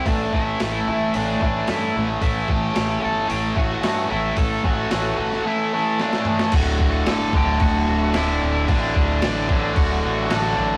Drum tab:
CC |----------------|----------------|----------------|x---x---x---x---|
HH |o---o---o---o---|o---o---o---o---|o---o-----------|----------------|
SD |----o-------o---|----o-------o---|----o--o----oo-o|----o-------o---|
T2 |----------------|----------------|--------------o-|----------------|
BD |o-o-------o-----|o-o-------o-----|o-o-------------|o-o---o-o-------|

CC |x---x---x---x---|
HH |----------------|
SD |----o-------o---|
T2 |----------------|
BD |o-o---o-o-------|